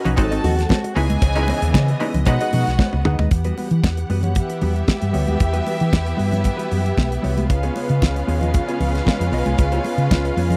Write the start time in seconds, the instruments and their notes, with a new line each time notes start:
Already playing: string section C#4 D#4 B4, clean electric guitar F#4
0.05 fingered electric bass B1, clav A#3 C#4 D#4 F#4 B4, clean electric guitar C#4 F#4 F#5, closed hi-hat, low conga
0.16 fingered electric bass G#1, clav G#3 C4 D#4 F#4 A4, string section G#3 C4 F#4, clean electric guitar D#4, violin section A4 A5, kick, closed hi-hat, cowbell, muted conga
0.31 clean electric guitar C4 F#4 A4 D#5, closed hi-hat
0.43 fingered electric bass D#2, clean electric guitar C4 F#4 A4 D#5, open hi-hat, muted conga, low conga
0.57 muted clean electric guitar stroke, snare, closed hi-hat
0.69 muted clean electric guitar stroke, kick, snare, cowbell, high conga
0.84 muted clean electric guitar stroke, closed hi-hat
0.95 fingered electric bass C#2, string section C#3 E3 B3 D#5, clav G#3 C#4 D#4 E4 B4, clean electric guitar B3 E4 G#4 E5, violin section G#4 G#5, open hi-hat
1.10 clean electric guitar B3 E4 G#4 D#5, closed hi-hat, high conga
1.22 fingered electric bass C#2, kick, closed hi-hat, cowbell, muted conga
1.35 clav G#3 C#4 D#4 E4 A#4, clean electric guitar B3 E4 G#4 D#5, closed hi-hat
1.43 clav B4
1.48 clean electric guitar B3 E4 G#4 D#5, open hi-hat, cowbell, muted conga
1.62 fingered electric bass D#2, muted clean electric guitar stroke, closed hi-hat
1.74 fingered electric bass C#3, muted clean electric guitar stroke, kick, snare, cowbell, high conga
1.88 muted clean electric guitar stroke, closed hi-hat
2.00 clav G#3 C#4 D#4 E4 B4, clean electric guitar B3 E4 G#4 D#5, open hi-hat
2.14 fingered electric bass C#2, clean electric guitar B3 E4 G#4 E5, closed hi-hat, low conga
2.26 fingered electric bass B2, string section G#3 B3, clav G#3 B3 D#4 F#4 B4, violin section F#4 F#5, muted clean electric guitar stroke, kick, closed hi-hat, cowbell, muted conga
2.41 clean electric guitar D#4 G#4 B4 D#5, closed hi-hat
2.52 fingered electric bass B2, clean electric guitar D#4 G#4 B4 D#5, open hi-hat, low conga
2.67 fingered electric bass B1, muted clean electric guitar stroke, snare, closed hi-hat
2.79 muted clean electric guitar stroke, kick, snare, cowbell, high conga
2.93 fingered electric bass C#2, muted clean electric guitar stroke, high tom
3.05 fingered electric bass D2, clean electric guitar D#4 G#4 B4 F#5, mid tom
3.19 fingered electric bass D#2, clean electric guitar D#4 B4 D#5, floor tom, high conga
3.31 fingered electric bass E2, string section E3 B3 G4 F#5, kick, closed hi-hat, muted conga
3.44 clean electric guitar G3 B3 F#4 B4, closed hi-hat
3.57 clean electric guitar G3 B3 F#4 B4, open hi-hat, muted conga
3.70 fingered electric bass E3, muted clean electric guitar stroke, closed hi-hat
3.84 fingered electric bass E2, muted clean electric guitar stroke, kick, snare, high conga
3.97 muted clean electric guitar stroke, closed hi-hat
4.10 fingered electric bass F#2, clean electric guitar G3 B3 F#4 B4, open hi-hat
4.23 clean electric guitar G3 B3 F#4 C#5, closed hi-hat, low conga
4.35 violin section B3 G4 E5, muted clean electric guitar stroke, kick, closed hi-hat, muted conga
4.50 muted clean electric guitar stroke, closed hi-hat
4.61 fingered electric bass E2, clean electric guitar G3 B3 F#4 B4, open hi-hat, muted conga, low conga
4.76 muted clean electric guitar stroke, closed hi-hat
4.88 muted clean electric guitar stroke, kick, snare, high conga
5.01 fingered electric bass G2, muted clean electric guitar stroke, closed hi-hat
5.13 fingered electric bass D2, clean electric guitar G3 B3 F#4 C#5, open hi-hat
5.27 fingered electric bass D#2, clean electric guitar G3 B3 F#4 B4, closed hi-hat, high conga
5.40 fingered electric bass E2, string section E4, kick, closed hi-hat, muted conga
5.53 clean electric guitar G3 B3 F#4 B4, closed hi-hat
5.66 clean electric guitar G3 B3 F#4 B4, open hi-hat, muted conga
5.79 fingered electric bass E3, muted clean electric guitar stroke, closed hi-hat
5.91 fingered electric bass E2, muted clean electric guitar stroke, kick, snare, high conga
6.06 muted clean electric guitar stroke, closed hi-hat
6.17 fingered electric bass G2, clean electric guitar G3 B3 F#4 B4, open hi-hat
6.31 clean electric guitar G3 B3 F#4 C#5, closed hi-hat, low conga
6.44 kick, closed hi-hat, muted conga
6.57 clean electric guitar G3 B3 F#4 B4, closed hi-hat
6.70 fingered electric bass F#2, clean electric guitar G3 B3 F#4 B4, open hi-hat
6.84 muted clean electric guitar stroke, closed hi-hat
6.97 fingered electric bass B1, muted clean electric guitar stroke, kick, snare, high conga
7.10 muted clean electric guitar stroke, closed hi-hat
7.22 fingered electric bass C2, clean electric guitar G3 B3 F#4 C#5, open hi-hat
7.37 clean electric guitar G3 B3 F#4 B4, closed hi-hat, high conga
7.49 fingered electric bass C#2, string section C#3 G#3 F4, violin section C#4 B4 F5, muted clean electric guitar stroke, kick, closed hi-hat, muted conga
7.63 clean electric guitar B3 F4 G#4 C#5, closed hi-hat
7.76 clean electric guitar B3 F4 G#4 C#5, open hi-hat, muted conga
7.89 fingered electric bass C#3, muted clean electric guitar stroke, closed hi-hat
8.02 fingered electric bass C#2, muted clean electric guitar stroke, kick, snare, high conga
8.16 muted clean electric guitar stroke, closed hi-hat
8.28 fingered electric bass D#2, clean electric guitar B3 F4 G#4 C#5, open hi-hat
8.41 clean electric guitar B3 F4 G#4 D#5, closed hi-hat, low conga
8.54 kick, closed hi-hat, muted conga
8.68 clean electric guitar B3 F4 G#4 C#5, closed hi-hat
8.80 fingered electric bass C#2, clean electric guitar B3 F4 G#4 C#5, open hi-hat, muted conga, low conga
8.94 muted clean electric guitar stroke, snare, closed hi-hat
9.06 muted clean electric guitar stroke, kick, snare, high conga
9.20 fingered electric bass F2, muted clean electric guitar stroke, closed hi-hat
9.32 fingered electric bass B1, clean electric guitar B3 F4 G#4 D#5, open hi-hat
9.46 fingered electric bass C2, clean electric guitar B3 F4 G#4 C#5, closed hi-hat, high conga
9.58 fingered electric bass C#2, muted clean electric guitar stroke, kick, closed hi-hat, muted conga
9.72 clean electric guitar B3 F4 G#4 C#5, closed hi-hat
9.84 clean electric guitar B3 F4 G#4 C#5, open hi-hat, muted conga
9.98 fingered electric bass C#3, muted clean electric guitar stroke, closed hi-hat
10.11 fingered electric bass C#2, muted clean electric guitar stroke, kick, snare, high conga
10.25 muted clean electric guitar stroke, closed hi-hat
10.37 fingered electric bass F2, clean electric guitar B3 F4 G#4 C#5, open hi-hat
10.50 clean electric guitar B3 F4 G#4 D#5, closed hi-hat, low conga